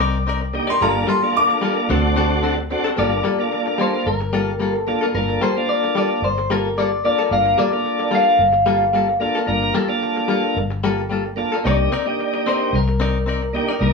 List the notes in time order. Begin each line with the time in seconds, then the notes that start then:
Already playing: C2 D6
0.00 C4 D#4 A#4 D5
0.27 C4 D#4 A#4 D5
0.41 muted clean electric guitar stroke
0.53 A#3 D4 D#4 G4, muted clean electric guitar stroke
0.67 D#4 A#4 D5 C6
0.80 G1 G3 A#3 D4 F4 A4 A#5
0.95 muted clean electric guitar stroke
1.07 G3 A#3 F4 A4 C6
1.22 A#3 D4 F4 A4, muted clean electric guitar stroke
1.35 D6, muted clean electric guitar stroke
1.49 muted clean electric guitar stroke
1.61 G3 A#3 F4 A4
1.76 muted clean electric guitar stroke
1.89 D2 D3 C4 D4 F#4 A4
2.03 muted clean electric guitar stroke
2.16 D3 C4 F#4 A4
2.42 D3 C4 F#4 A4
2.58 muted clean electric guitar stroke
2.70 C4 D4 F#4 A4, muted clean electric guitar stroke
2.84 C4 F#4 A4
2.97 G1 G3 A#3 D4 F4 A4 D5
3.12 muted clean electric guitar stroke
3.24 G3 A#3 F4 A4
3.39 A#3 D4 F4 A4, muted clean electric guitar stroke
3.52 muted clean electric guitar stroke
3.66 muted clean electric guitar stroke
3.78 G3 A#3 F4 A4 C5
3.94 muted clean electric guitar stroke
4.06 G1 A#4
4.21 muted clean electric guitar stroke
4.33 G3 A#3 F4 A4
4.60 G3 A#3 F4 A4
4.74 A4, muted clean electric guitar stroke
4.87 A#3 D4 F4 A4, muted clean electric guitar stroke
5.01 A#3 F4 A4
5.14 G1 A#3 D4 F4 A4 A#4
5.28 muted clean electric guitar stroke
5.41 G3 A#3 F4 A4 C5
5.56 A#3 D4 F4 A4, muted clean electric guitar stroke
5.69 D5, muted clean electric guitar stroke
5.84 muted clean electric guitar stroke
5.95 G3 A#3 F4 A4 D5
6.11 muted clean electric guitar stroke
6.22 G1 C5
6.38 muted clean electric guitar stroke
6.50 G3 A#3 F4 A4 A#4
6.78 G3 A#3 F4 A4 D5
6.92 muted clean electric guitar stroke
7.04 A#3 D4 F4 A4 D5, muted clean electric guitar stroke
7.19 A#3 F4 A4
7.31 G1 A#3 D4 F4 A#4 F5
7.46 muted clean electric guitar stroke
7.58 G3 A#3 F4 A4 D5
7.72 A#3 D4 F4 A4, muted clean electric guitar stroke
7.85 muted clean electric guitar stroke
7.99 muted clean electric guitar stroke
8.11 G3 A#3 F4 A4 F5
8.26 muted clean electric guitar stroke
8.39 G1
8.53 muted clean electric guitar stroke
8.66 G3 A#3 F4 A4
8.93 G3 A#3 F4 A4
9.08 muted clean electric guitar stroke
9.20 A#3 D4 F4 A4, muted clean electric guitar stroke
9.35 A#3 F4 A4
9.47 G1 A#3 D4 F4 A#4
9.63 muted clean electric guitar stroke
9.74 G3 A#3 F4 A4
9.88 A#3 D4 F4 A4, muted clean electric guitar stroke
10.02 muted clean electric guitar stroke
10.16 muted clean electric guitar stroke
10.28 G3 A#3 F4 A4
10.44 muted clean electric guitar stroke
10.56 G1
10.71 muted clean electric guitar stroke
10.84 G3 A#3 F4 A4
11.10 G3 A#3 F4 A4
11.25 muted clean electric guitar stroke
11.36 A#3 D4 F4 A4, muted clean electric guitar stroke
11.52 A#3 F4 A4
11.63 C2 A#3 C4 D4 D#4 G4 A#4 D5
11.79 muted clean electric guitar stroke
11.92 C4 D#4 A#4 D5
12.05 A#3 D4 D#4 G4, muted clean electric guitar stroke
12.20 muted clean electric guitar stroke
12.34 muted clean electric guitar stroke
12.47 C4 D#4 A#4 C5 D5
12.61 muted clean electric guitar stroke
12.73 C2 A#4
12.88 muted clean electric guitar stroke
13.00 C4 D#4 A#4 D5
13.26 C4 D#4 A#4 D5
13.42 muted clean electric guitar stroke
13.53 A#3 D4 D#4 G4, muted clean electric guitar stroke
13.69 D#4 A#4 D5
13.79 C2 A#3 D4 D#4 A#4